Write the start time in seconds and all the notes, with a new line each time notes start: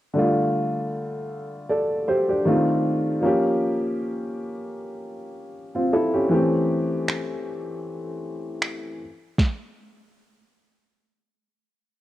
0.13 D3 G3 A3
0.18 F4
1.69 A4 D5
2.08 G4 C5
2.29 D4 G4
2.45 D#3 A3 C4 F4
3.21 F3 A#3 C#4
3.26 G4
5.75 C4 F4
5.93 E4 A4
6.14 C#4 G4
6.29 E3 A3 C4
6.34 G4
7.08 finger snap
8.62 finger snap
9.38 kick, snare